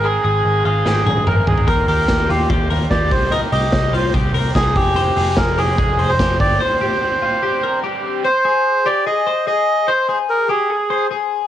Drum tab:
HH |----------------|x-o---o-x-o-x-o-|x-o-x-o-x-o-x-o-|x-o-x-o-x-o-x-o-|
SD |--------o-------|----o-------o---|----o-------o---|----o-------o---|
T1 |----------oo----|----------------|----------------|----------------|
T2 |------------o---|----------------|----------------|----------------|
FT |--------------oo|----------------|----------------|----------------|
BD |----------------|o---o---o---o-o-|----o---o---o-o-|----o---o---o-o-|

HH |----------------|----------------|----------------|
SD |----------------|----------------|----------------|
T1 |----------------|----------------|----------------|
T2 |----------------|----------------|----------------|
FT |----------------|----------------|----------------|
BD |----------------|----------------|----------------|